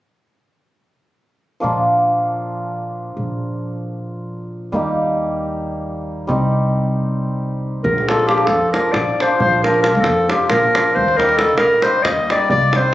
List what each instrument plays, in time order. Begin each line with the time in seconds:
1.60 upright bass A#1, hammered dulcimer F3 A#3 D4 F4
3.17 upright bass A#1
4.72 upright bass D#2, hammered dulcimer G3 A#3 D#4 G4
6.27 upright bass C2, hammered dulcimer G3 C4 D#4 G4
7.84 upright bass A#1, clarinet A#4, davul low
7.98 davul high
8.08 hammered dulcimer F3 A#3 D4 F4, clarinet A4, davul high
8.19 davul high
8.27 hammered dulcimer F3 A#3 D4 F4, clarinet G4, davul high
8.38 davul high
8.46 upright bass F2, clarinet A4, davul high
8.72 hammered dulcimer F3 A#3 D4 F4, clarinet A#4, davul high
8.92 upright bass A#1, clarinet D5, davul high
9.20 hammered dulcimer F3 A#3 D4 F4, clarinet C5, davul high
9.40 upright bass A#1, clarinet C5, davul low
9.53 davul high
9.64 hammered dulcimer F3 A#3 D4 F4, clarinet A#4, davul high
9.74 davul high
9.83 hammered dulcimer F3 A#3 D4 F4, clarinet A#4, davul high
9.95 davul high
10.01 upright bass F2, clarinet A4, davul high
10.28 hammered dulcimer F3 A#3 D4 F4, clarinet G4, davul high
10.50 upright bass A#1, clarinet A#4, davul high
10.74 hammered dulcimer F3 A#3 D4 F4, davul high
10.95 upright bass D#2, clarinet C5, davul low
11.08 davul high
11.17 hammered dulcimer G3 A#3 D#4 G4, clarinet A#4, davul high
11.29 davul high
11.37 hammered dulcimer G3 A#3 D#4 G4, clarinet A4, davul high
11.49 davul high
11.57 upright bass A#1, clarinet A#4, davul high
11.82 hammered dulcimer G3 A#3 D#4 G4, clarinet C5, davul high
12.03 upright bass D#2, clarinet D#5, davul high
12.30 hammered dulcimer G3 A#3 D#4 G4, clarinet D5, davul high
12.50 upright bass C2, clarinet D5, davul low
12.62 davul high
12.73 hammered dulcimer G3 C4 D#4 G4, clarinet C5, davul high